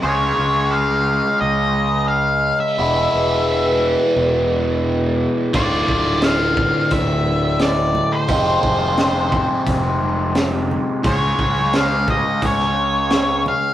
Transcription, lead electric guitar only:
0.03 C#5
0.71 F5
1.41 D#5
2.08 F5
2.60 E5
5.56 D5
6.24 F5
6.93 E5
7.62 D5
8.12 C5
11.06 C#5
11.76 F5
12.10 D#5
12.46 C#5
13.48 F5

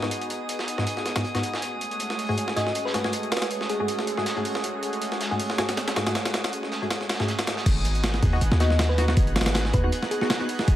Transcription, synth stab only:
0.02 G#2 B3 D#4 F#4
0.78 G#2 B3 D#4 F#4
1.16 G#2 B3 D#4 F#4
1.34 G#2 B3 D#4 F#4
2.29 G#2 A3 F#4 G#4
2.56 G#2 A3 F#4 G#4
2.94 G#2 A3 F#4 G#4
3.04 G#2 A3 F#4 G#4
3.80 G#2 A3 F#4 G#4
4.18 G#2 A3 F#4 G#4
4.36 G#2 A3 F#4 G#4
5.31 G#2 A3 F#4 G#4
5.58 G#2 A3 F#4 G#4
5.96 G#2 A3 F#4 G#4
6.06 G#2 A3 F#4 G#4
6.82 G#2 A3 F#4 G#4
7.20 G#2 A3 F#4 G#4
8.33 B3 D#4 F#4
8.61 B3 D#4 F#4
8.98 B3 D#4 F#4
9.08 B3 D#4 F#4
9.84 B3 D#4 F#4
10.22 B3 D#4 F#4
10.40 B3 D#4 F#4

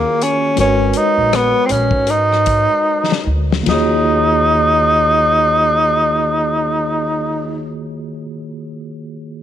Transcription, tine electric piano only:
Already playing: D#3 A#3 F4 F#4 G#4 C#5
0.56 G#3 F#4 A#4
0.60 B4 C#5
3.61 D#3 A#3
3.66 F4 F#4
3.71 G#4 C#5

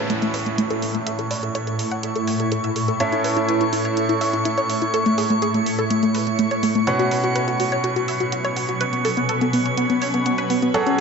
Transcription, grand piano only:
Already playing: A2 C#4 E4 A4 C#5 E5
3.00 A2 C#4 E4 A4 C#5 E5
6.87 B2 C#4 F#4 B4 C#5 F#5
10.74 F#3 F#4 G#4 A4 C#5 F#5

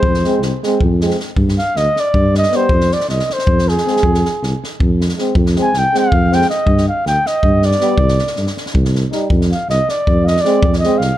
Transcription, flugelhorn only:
Already playing: C5
1.58 F5
1.77 D#5
2.00 D5
2.38 D#5
2.56 C5
2.93 D5
3.10 D#5
3.33 C5
3.69 G#4
5.62 G#5
5.78 G5
5.98 F5
6.34 G5
6.50 D#5
6.88 F5
7.07 G5
7.27 D#5
7.65 D5
9.52 F5
9.70 D#5
9.90 D5
10.24 D#5 F5
10.41 D5
10.79 D#5
10.98 F5

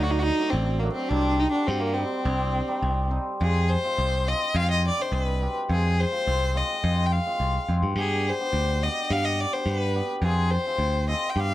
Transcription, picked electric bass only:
Already playing: D2
0.53 A1
1.11 C2
1.68 G2
2.25 C2
2.82 C2
3.41 F2
3.98 C2
4.55 F2
5.12 C2
5.69 F2
6.27 C2
6.84 F2
7.40 C2
7.69 F2
7.83 G2
7.96 G2
8.53 D2
9.10 G2
9.66 G2
10.22 F2
10.78 D2
11.36 G2

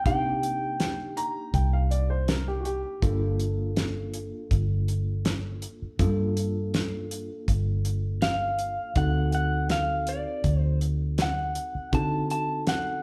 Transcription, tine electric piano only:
0.06 A#3 D4 D#4 G4
3.02 A#3 D4 F4 A4
5.99 A#3 D4 F4 A4
8.96 C4 D#4 F#4 A4
11.93 C4 D#4 F#4 A4

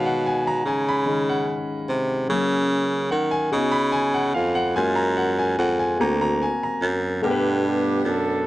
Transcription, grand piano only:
Already playing: D#3 G#3 C#5 F5
0.06 F#5
0.26 G#5
0.47 A#5
0.67 G#5
0.89 B5
1.05 D#3 G#3 C#4
1.29 F#5
2.29 F#3 A#3 C#4
3.11 F#5
3.31 G#5
3.52 B3 D#4 F#4
3.72 B5
3.92 G#5
4.14 F#5
4.34 F5
4.55 F#5
4.75 G#3 A#3 F4 G#5
4.96 A#5
5.17 F#5
5.39 G#5
5.59 F#5
5.79 G#5
5.99 A#3 C4 F#4 A#5
6.21 A#5
6.42 G#5
6.63 A#5
7.22 B2 A3 G4 A#4 F#5
7.31 B4

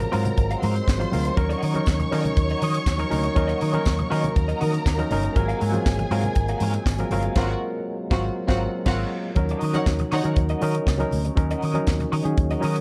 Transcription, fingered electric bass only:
0.14 G#2
0.38 G#1
0.64 G#2
0.88 G#1
1.13 D2
1.37 D#2
1.63 D#3
1.87 D#2
2.12 D#3
2.37 D#2
2.62 D#3
2.87 D#2
3.12 D2
3.37 D#2
3.62 D#3
3.86 D#2
4.12 D#3
4.37 D#2
4.62 D#3
4.86 D#2
5.12 G1
5.36 G#1
5.62 G#2
5.86 G#1
6.11 G#2
6.36 G#1
6.61 G#2
6.86 G#1
7.11 G1
7.36 G#1
8.11 G#1
8.49 G#1
8.86 G#1
9.36 D#2
9.62 D#3
9.87 D#2
10.12 D#3
10.25 D#3
10.37 D#2
10.62 D#3
10.87 C#2
11.13 D2
11.38 D#2
11.63 D#3
11.88 D#2
12.13 D#3
12.25 D#3
12.38 D#2
12.63 D#3

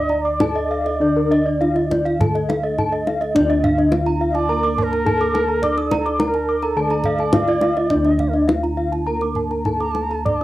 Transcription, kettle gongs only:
Already playing: D2 D4
0.40 D#4
1.00 D4
1.60 D#4
2.19 D3
2.79 D#4
3.35 D4
3.40 D2
5.06 D#4
5.62 D5
6.20 D#4
6.77 D3
7.33 D#4
7.91 D4
7.96 D2
9.65 D#4
10.25 D5

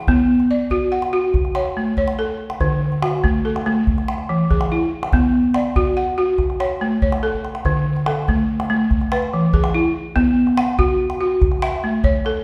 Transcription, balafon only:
0.08 B3
0.51 D5
0.71 F#4
0.92 F#5
1.13 F#4
1.56 C#5
1.77 A3
1.98 C#5
2.19 A4
2.61 D3
3.03 F#4
3.24 A3
3.45 A4
3.66 A3
4.29 E3
4.51 G#4
4.72 E4
5.13 B3
5.55 D5
5.76 F#4
5.97 F#5
6.18 F#4
6.60 C#5
6.81 A3
7.02 C#5
7.23 A4
7.66 D3
8.07 A4
8.29 A3
8.70 A3
9.12 B4
9.34 E3
9.54 G#4
9.74 E4
10.16 B3
10.58 F#5
10.79 F#4
11.21 F#4
11.63 E5
11.84 A3
12.04 C#5
12.26 A4

